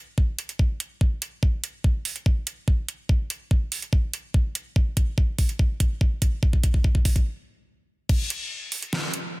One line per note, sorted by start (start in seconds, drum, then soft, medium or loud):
0.18 kick medium
0.39 closed hi-hat medium
0.49 closed hi-hat soft
0.59 kick loud
0.80 closed hi-hat medium
1.01 kick loud
1.22 closed hi-hat medium
1.43 kick loud
1.64 closed hi-hat medium
1.84 kick loud
2.05 open hi-hat medium
2.16 closed hi-hat soft
2.26 kick loud
2.47 closed hi-hat medium
2.68 kick loud
2.89 closed hi-hat medium
3.09 kick loud
3.30 closed hi-hat medium
3.51 kick loud
3.72 open hi-hat medium
3.82 closed hi-hat soft
3.93 kick loud
4.13 closed hi-hat medium
4.34 kick loud
4.55 closed hi-hat medium
4.76 kick loud
4.97 kick loud
4.97 closed hi-hat medium
5.18 kick loud
5.39 kick loud
5.39 open hi-hat medium
5.49 closed hi-hat soft
5.59 kick loud
5.80 kick loud
5.80 closed hi-hat medium
6.01 kick loud
6.22 kick loud
6.22 closed hi-hat medium
6.43 kick loud
6.53 kick medium
6.63 kick loud
6.63 closed hi-hat medium
6.74 kick medium
6.84 kick loud
6.95 kick loud
7.05 kick loud
7.05 open hi-hat loud
7.16 kick loud
7.16 closed hi-hat soft
8.09 kick loud
8.09 crash loud
8.30 closed hi-hat medium
8.72 open hi-hat loud
8.82 closed hi-hat soft
8.93 snare loud
9.14 closed hi-hat medium